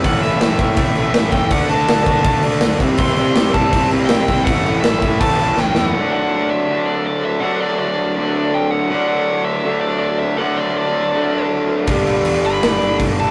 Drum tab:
CC |xxxxxxxx|xxxxxxxx|xxxxxxxx|xxxxxx--|
SD |--o---o-|--o---o-|--o---o-|--o---oo|
BD |o--oo--o|o--oo--o|o--oo--o|o--oo---|

CC |--------|--------|--------|--------|
SD |--------|--------|--------|--------|
BD |--------|--------|--------|--------|

CC |xxxxxxxx|
SD |----o---|
BD |o-----o-|